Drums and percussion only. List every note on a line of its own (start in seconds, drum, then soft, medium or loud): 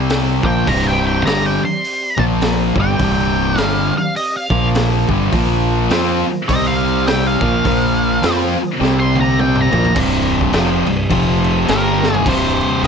0.09 snare loud
0.09 open hi-hat medium
0.43 kick loud
0.67 kick loud
0.67 crash loud
1.26 snare loud
1.26 open hi-hat medium
1.84 open hi-hat medium
2.18 kick loud
2.41 snare loud
2.41 open hi-hat medium
2.76 kick loud
2.99 kick loud
2.99 open hi-hat medium
3.57 snare loud
3.57 open hi-hat medium
4.16 open hi-hat medium
4.50 kick loud
4.74 snare loud
4.74 open hi-hat medium
5.09 kick loud
5.33 kick loud
5.33 open hi-hat medium
5.90 snare loud
5.90 open hi-hat medium
6.49 kick loud
6.49 open hi-hat medium
7.07 snare loud
7.07 open hi-hat medium
7.41 kick loud
7.65 kick loud
7.65 open hi-hat medium
8.23 snare loud
8.23 open hi-hat medium
8.83 snare medium
9.15 high tom medium
9.39 mid tom medium
9.55 mid tom medium
9.73 floor tom loud
9.85 floor tom loud
9.96 kick loud
9.96 crash loud
10.29 crash medium
10.41 kick medium
10.53 snare loud
10.53 crash medium
10.86 crash medium
11.10 kick loud
11.10 crash loud
11.44 crash medium
11.68 snare loud
11.68 crash medium
12.03 snare medium
12.14 floor tom loud
12.26 kick loud
12.26 crash loud
12.26 crash medium
12.61 crash medium
12.84 crash medium